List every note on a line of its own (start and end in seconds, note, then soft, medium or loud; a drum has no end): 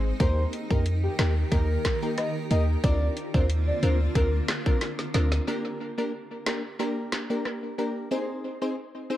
0.00 0.12 G#1 loud
0.00 0.18 G#3 medium
0.00 0.17 C4 medium
0.00 0.18 D#4 medium
0.00 2.80 D#4 medium
0.00 0.18 G#4 medium
0.00 0.18 C5 medium
0.20 0.45 D#2 loud
0.20 2.81 D#3 medium
0.20 0.66 A#3 medium
0.20 0.66 D#4 medium
0.20 0.66 G4 medium
0.20 2.81 G4 medium
0.20 2.81 A#4 medium
0.20 0.66 A#4 loud
0.20 0.43 C5 loud
0.20 kick loud
0.20 closed hi-hat medium
0.53 closed hi-hat medium
0.70 1.08 F2 medium
0.70 0.84 A#3 medium
0.70 0.85 D#4 medium
0.70 0.85 G4 medium
0.70 0.81 A#4 medium
0.70 0.85 A#4 medium
0.70 kick medium
0.86 closed hi-hat medium
1.03 1.14 G4 medium
1.19 1.44 D#2 medium
1.19 1.35 A#3 medium
1.19 1.35 D#4 medium
1.19 1.31 G4 medium
1.19 1.35 G4 medium
1.19 1.35 A#4 medium
1.19 snare loud
1.19 clap loud
1.19 closed hi-hat soft
1.52 1.77 D#2 loud
1.52 1.98 A#3 loud
1.52 1.98 D#4 medium
1.52 1.98 G4 medium
1.52 1.99 A#4 loud
1.52 1.98 A#4 loud
1.52 kick loud
1.52 closed hi-hat medium
1.85 kick medium
1.85 snare loud
1.85 clap medium
1.85 closed hi-hat medium
2.02 2.47 A#3 medium
2.02 2.47 D#4 medium
2.02 2.47 G4 medium
2.02 2.47 A#4 medium
2.18 2.30 D#5 medium
2.18 cross-stick loud
2.18 closed hi-hat medium
2.50 2.76 D#2 loud
2.50 2.81 A#3 medium
2.50 2.81 D#4 medium
2.50 2.81 G4 medium
2.50 2.81 A#4 medium
2.50 2.63 D#5 medium
2.50 closed hi-hat medium
2.83 3.09 D2 loud
2.83 5.45 D3 medium
2.83 5.45 A#3 medium
2.83 3.30 C4 loud
2.83 5.45 C4 medium
2.83 3.30 D4 medium
2.83 5.45 F4 loud
2.83 3.30 F4 medium
2.83 3.30 A#4 loud
2.83 3.07 D5 loud
2.83 kick loud
2.83 closed hi-hat medium
3.17 closed hi-hat medium
3.34 3.72 D#2 loud
3.34 3.48 C4 medium
3.34 3.48 D4 medium
3.34 3.49 F4 medium
3.34 3.49 A#4 medium
3.34 3.45 C5 medium
3.34 kick medium
3.50 closed hi-hat medium
3.67 3.78 D5 medium
3.83 4.08 D2 medium
3.83 3.99 C4 medium
3.83 3.99 D4 medium
3.83 3.99 F4 medium
3.83 3.99 A#4 medium
3.83 3.95 C5 medium
3.83 closed hi-hat soft
4.15 4.41 D2 loud
4.15 4.62 C4 loud
4.15 4.62 D4 medium
4.15 4.62 F4 medium
4.15 4.28 A#4 medium
4.15 4.62 A#4 loud
4.15 kick loud
4.15 closed hi-hat medium
4.48 snare loud
4.48 clap medium
4.48 closed hi-hat medium
4.66 5.11 C4 medium
4.66 5.11 D4 medium
4.66 5.11 F4 medium
4.66 4.77 A#4 medium
4.66 5.11 A#4 medium
4.66 kick loud
4.81 snare medium
4.81 closed hi-hat medium
4.99 snare medium
5.14 5.40 D2 loud
5.14 5.45 C4 medium
5.14 5.45 D4 medium
5.14 5.45 F4 medium
5.14 5.45 A#4 medium
5.14 snare medium
5.14 closed hi-hat medium
5.32 snare medium
5.47 5.94 A#3 medium
5.47 5.94 D4 medium
5.47 5.94 G4 medium
5.47 5.94 A#4 loud
5.98 6.12 A#3 medium
5.98 6.12 D4 medium
5.98 6.12 G4 medium
5.98 6.12 A#4 medium
6.46 6.62 A#3 medium
6.46 6.62 D4 medium
6.46 6.62 G4 medium
6.46 6.62 A#4 medium
6.46 snare loud
6.46 clap medium
6.79 7.26 A#3 loud
6.79 7.26 D4 medium
6.79 7.26 G4 medium
6.79 7.26 A#4 loud
7.12 snare loud
7.12 clap medium
7.30 7.75 A#3 medium
7.30 7.75 D4 medium
7.30 7.75 G4 medium
7.30 7.75 A#4 medium
7.45 cross-stick medium
7.78 8.09 A#3 medium
7.78 8.09 D4 medium
7.78 8.09 G4 medium
7.78 8.09 A#4 medium
8.11 8.57 C4 loud
8.11 8.57 D#4 medium
8.11 8.58 G#4 medium
8.11 8.58 C5 loud
8.62 8.76 C4 medium
8.62 8.76 D#4 medium
8.62 8.76 G#4 medium
8.62 8.76 C5 medium
9.10 9.17 C4 medium
9.10 9.17 D#4 medium
9.10 9.17 G#4 medium
9.10 9.17 C5 medium